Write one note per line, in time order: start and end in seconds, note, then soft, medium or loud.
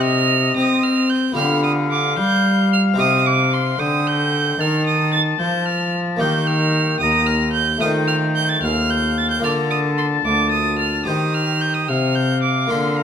0.00 0.52 C3 medium
0.00 0.54 C3 medium
0.00 0.55 C4 medium
0.00 1.31 D#4 medium
0.00 1.32 G4 medium
0.00 1.07 D#5 loud
0.00 0.56 F6 loud
0.57 1.33 C4 medium
0.57 1.35 C4 medium
0.57 0.85 D#6 loud
0.84 1.11 F6 loud
1.10 1.36 G6 loud
1.32 2.92 B3 medium
1.32 2.93 F4 medium
1.32 2.93 G4 medium
1.36 2.13 D3 medium
1.36 2.20 D3 medium
1.36 3.81 F5 loud
1.36 1.63 F6 loud
1.64 1.72 D#6 loud
1.91 2.17 D6 loud
2.17 2.94 G3 medium
2.17 2.99 G3 medium
2.17 2.71 G6 loud
2.73 2.81 F6 loud
2.94 6.15 C4 medium
2.94 6.15 D#4 medium
2.94 6.16 G4 medium
2.98 3.75 C3 medium
2.98 3.78 C3 medium
2.98 3.27 D#6 loud
3.26 3.55 D6 loud
3.53 3.81 C6 loud
3.79 4.55 D3 medium
3.79 4.58 D3 medium
3.79 4.59 G5 medium
3.79 4.08 D#6 loud
4.07 4.62 G6 loud
4.59 5.36 D#3 medium
4.59 5.38 D#3 medium
4.59 6.18 A5 medium
4.59 4.86 F6 loud
4.87 5.12 D#6 loud
5.12 5.20 A6 loud
5.39 6.22 F3 medium
5.39 6.17 F3 medium
5.39 5.67 G6 medium
5.66 5.93 F6 loud
6.17 7.76 A#3 medium
6.17 7.77 D#4 medium
6.17 7.78 G4 medium
6.17 6.49 G6 loud
6.21 7.02 D#3 medium
6.21 6.98 D#3 medium
6.21 7.00 G5 medium
6.48 7.00 F6 loud
7.00 7.78 D#2 medium
7.00 7.81 D#2 medium
7.00 7.54 A#5 loud
7.00 7.28 D#6 loud
7.26 7.53 F6 loud
7.53 7.81 G6 loud
7.78 9.39 A3 medium
7.78 9.39 F4 medium
7.78 9.40 C5 medium
7.78 7.89 D#6 loud
7.82 8.62 D#3 medium
7.82 8.60 D#3 medium
7.82 8.66 G5 loud
8.08 8.16 F6 loud
8.36 8.51 G6 loud
8.49 8.62 A6 loud
8.63 9.43 D#2 medium
8.63 9.41 D#2 medium
8.63 9.45 F5 medium
8.63 8.92 F6 loud
8.91 9.20 G6 loud
9.18 9.30 A6 loud
9.31 9.44 G6 loud
9.40 11.01 A#3 medium
9.40 11.02 F4 medium
9.40 11.03 D5 medium
9.44 10.22 D3 medium
9.44 10.24 D3 medium
9.44 11.10 A5 loud
9.44 9.52 F6 loud
9.71 9.79 D#6 loud
9.98 10.06 C6 medium
10.25 11.03 D2 medium
10.25 11.06 D2 medium
10.25 10.51 D6 loud
10.52 10.78 D#6 loud
10.79 11.05 F6 medium
11.05 11.92 D#3 medium
11.05 11.86 D#3 medium
11.05 12.66 G4 medium
11.05 12.67 C5 medium
11.05 11.92 G5 medium
11.05 11.36 D#6 loud
11.34 11.63 F6 loud
11.61 11.76 G6 loud
11.75 11.90 D#6 medium
11.89 12.67 C3 medium
11.89 12.71 C3 medium
11.89 13.03 F5 loud
11.89 12.17 F6 medium
12.16 12.42 G6 loud
12.43 12.72 D6 medium
12.67 13.03 A#3 medium
12.67 13.03 F4 soft
12.67 13.03 A#4 medium
12.67 12.98 C6 medium
12.71 13.03 D3 medium
12.97 13.03 A#5 loud